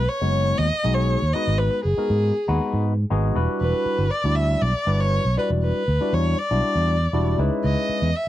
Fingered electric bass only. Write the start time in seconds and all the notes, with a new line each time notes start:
0.22 F#1
0.59 D#2
0.73 muted fingered electric bass stroke
0.85 B1
1.22 D#2
1.35 muted fingered electric bass stroke
1.47 G#1
1.85 F#1
1.98 muted fingered electric bass stroke
2.10 G#2
2.49 D#2
2.73 G#2
3.11 G#1
3.35 E1
3.61 E1
3.86 muted fingered electric bass stroke
3.98 G1
4.24 D2
4.62 B1
4.75 muted fingered electric bass stroke
4.87 G1
5.25 B1
5.38 muted fingered electric bass stroke
5.50 E1
5.88 D2
6.01 muted fingered electric bass stroke
6.13 E2
6.51 B1
6.76 E2
7.13 E1
7.38 C#2
7.64 C#2
7.89 muted fingered electric bass stroke
8.02 E2